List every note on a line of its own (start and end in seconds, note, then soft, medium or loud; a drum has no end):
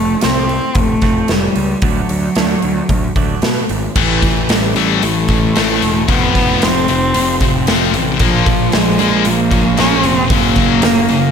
0.00 0.14 F1 loud
0.00 0.25 A3 loud
0.21 0.58 C2 medium
0.21 0.49 C3 medium
0.21 0.49 F3 medium
0.21 0.48 A3 medium
0.21 0.80 C4 medium
0.21 0.48 C4 medium
0.21 snare loud
0.21 open hi-hat medium
0.49 muted clean electric guitar stroke medium
0.49 open hi-hat soft
0.75 0.93 F1 medium
0.75 1.33 A3 loud
0.75 muted clean electric guitar stroke soft
0.75 kick loud
0.75 open hi-hat medium
1.02 1.20 F1 medium
1.02 1.28 C3 medium
1.02 1.28 F3 medium
1.02 1.29 A3 medium
1.02 1.29 C4 medium
1.02 kick medium
1.02 snare soft
1.02 open hi-hat soft
1.28 1.47 F1 medium
1.28 1.87 G3 medium
1.28 muted clean electric guitar stroke soft
1.28 snare loud
1.28 open hi-hat medium
1.56 1.73 C#2 medium
1.56 muted clean electric guitar stroke soft
1.56 open hi-hat medium
1.82 2.00 D2 medium
1.82 2.09 D3 medium
1.82 2.09 F#3 medium
1.82 2.09 A3 medium
1.82 2.08 D4 medium
1.82 kick loud
1.82 open hi-hat medium
1.86 3.44 F#3 medium
2.09 2.27 D2 medium
2.09 muted clean electric guitar stroke medium
2.09 open hi-hat medium
2.35 2.54 D2 medium
2.35 2.63 D3 medium
2.35 2.62 F#3 medium
2.35 2.62 A3 medium
2.35 2.61 D4 medium
2.35 snare loud
2.35 open hi-hat medium
2.62 2.81 D2 medium
2.62 muted clean electric guitar stroke soft
2.62 open hi-hat soft
2.89 3.07 D2 loud
2.89 muted clean electric guitar stroke soft
2.89 kick medium
2.89 open hi-hat medium
3.16 3.33 D2 medium
3.16 3.42 D3 medium
3.16 3.42 F#3 medium
3.16 3.43 A3 medium
3.16 3.43 D4 medium
3.16 kick medium
3.16 open hi-hat soft
3.42 3.60 B2 medium
3.42 snare loud
3.42 open hi-hat medium
3.69 3.87 G#1 medium
3.69 muted clean electric guitar stroke soft
3.69 open hi-hat medium
3.96 4.21 A1 medium
3.96 5.29 A2 medium
3.96 4.21 A2 medium
3.96 4.21 E3 medium
3.96 4.53 E3 medium
3.96 4.22 A3 medium
3.96 kick loud
3.96 crash medium
4.22 4.48 A1 medium
4.22 4.47 A2 medium
4.22 4.47 E3 medium
4.22 5.02 A3 medium
4.22 kick medium
4.22 open hi-hat medium
4.49 4.75 A1 loud
4.49 4.73 A2 medium
4.49 4.73 E3 medium
4.49 5.06 G3 medium
4.49 5.55 C4 medium
4.49 snare loud
4.49 open hi-hat medium
4.76 5.01 A1 medium
4.76 5.01 A2 medium
4.76 6.09 E3 medium
4.76 5.01 E3 medium
4.76 5.02 A3 medium
4.76 open hi-hat soft
5.02 5.27 A1 loud
5.02 5.26 A2 medium
5.02 5.27 E3 medium
5.02 6.09 A3 medium
5.02 5.82 A3 loud
5.02 open hi-hat medium
5.28 5.54 A1 medium
5.28 5.53 A2 medium
5.28 5.54 E3 medium
5.28 5.82 E4 medium
5.28 kick medium
5.28 open hi-hat medium
5.56 5.81 A1 medium
5.56 5.80 A2 loud
5.56 5.81 E3 loud
5.56 5.81 A3 loud
5.56 6.09 C4 medium
5.56 snare loud
5.56 open hi-hat medium
5.82 6.07 E1 medium
5.82 6.06 A2 medium
5.82 6.06 E3 medium
5.82 6.07 A3 loud
5.82 6.09 E4 medium
5.82 open hi-hat medium
6.08 6.34 F1 medium
6.08 6.33 F2 medium
6.08 7.42 F2 medium
6.08 6.34 C3 loud
6.08 6.34 F3 loud
6.08 6.65 B3 loud
6.08 kick medium
6.08 open hi-hat medium
6.35 6.60 F1 loud
6.35 6.60 F2 medium
6.35 6.61 C3 loud
6.35 7.14 F3 medium
6.35 6.61 F3 loud
6.35 kick medium
6.35 open hi-hat medium
6.62 6.87 F1 medium
6.62 6.86 F2 medium
6.62 6.86 C3 medium
6.62 7.67 A3 medium
6.62 7.68 C4 loud
6.62 snare loud
6.62 open hi-hat medium
6.88 7.14 F1 medium
6.88 7.12 F2 medium
6.88 8.20 C3 medium
6.88 7.13 C3 medium
6.88 open hi-hat medium
7.14 7.40 F1 medium
7.14 7.38 F2 medium
7.14 7.39 C3 medium
7.14 8.21 F3 medium
7.14 open hi-hat medium
7.41 7.66 F1 medium
7.41 7.65 F2 medium
7.41 7.66 C3 medium
7.41 7.93 C4 medium
7.41 kick medium
7.41 open hi-hat medium
7.67 7.93 F1 medium
7.67 7.93 F2 loud
7.67 7.93 C3 loud
7.67 7.93 F3 loud
7.67 8.21 A3 medium
7.67 snare loud
7.67 open hi-hat medium
7.94 8.19 A1 medium
7.94 8.18 F2 medium
7.94 8.18 C3 medium
7.94 8.21 C4 medium
7.94 open hi-hat medium
8.19 8.45 A#1 loud
8.19 8.45 A#2 medium
8.19 8.97 A#2 medium
8.19 8.45 F3 loud
8.19 8.76 F3 medium
8.19 8.46 A#3 medium
8.19 kick loud
8.19 open hi-hat medium
8.46 8.72 A#1 medium
8.46 8.71 A#2 medium
8.46 9.24 F3 medium
8.46 8.71 F3 medium
8.46 kick loud
8.46 open hi-hat medium
8.72 8.98 A#1 medium
8.72 8.97 A#2 medium
8.72 8.97 F3 medium
8.72 9.28 G#3 medium
8.72 9.77 A#3 medium
8.72 snare loud
8.72 open hi-hat medium
8.98 9.25 A#1 medium
8.98 10.30 A#2 medium
8.98 9.24 A#2 medium
8.98 9.24 F3 medium
8.98 9.25 A#3 medium
8.98 open hi-hat soft
9.25 9.51 A#1 medium
9.25 9.50 A#2 medium
9.25 10.31 F3 medium
9.25 9.50 F3 medium
9.25 9.81 A#3 loud
9.25 open hi-hat medium
9.51 9.77 A#1 medium
9.51 9.76 A#2 medium
9.51 9.76 F3 medium
9.51 10.03 C#4 medium
9.51 kick medium
9.51 open hi-hat medium
9.77 10.04 A#1 medium
9.77 10.03 A#2 loud
9.77 10.03 F3 loud
9.77 10.31 A#3 medium
9.77 10.03 A#3 loud
9.77 10.07 C#4 loud
9.77 snare loud
9.77 open hi-hat medium
10.04 10.30 F1 medium
10.04 10.28 A#2 medium
10.04 10.28 F3 medium
10.04 10.31 C4 loud
10.04 10.31 C#4 medium
10.04 open hi-hat medium
10.30 10.56 F#1 medium
10.30 11.31 F#2 medium
10.30 10.56 F#2 medium
10.30 10.56 C#3 medium
10.30 10.56 F#3 loud
10.30 11.31 A#3 loud
10.30 kick loud
10.30 open hi-hat medium
10.56 10.82 F#1 medium
10.56 10.82 F#2 medium
10.56 10.82 C#3 medium
10.56 11.31 F#3 medium
10.56 10.83 F#3 loud
10.56 kick medium
10.56 open hi-hat medium
10.82 11.09 F#1 loud
10.82 11.07 F#2 medium
10.82 11.07 C#3 medium
10.82 11.31 A#3 medium
10.82 snare loud
10.82 open hi-hat medium
11.09 11.31 F#1 medium
11.09 11.31 F#2 medium
11.09 11.31 C#3 medium
11.09 open hi-hat soft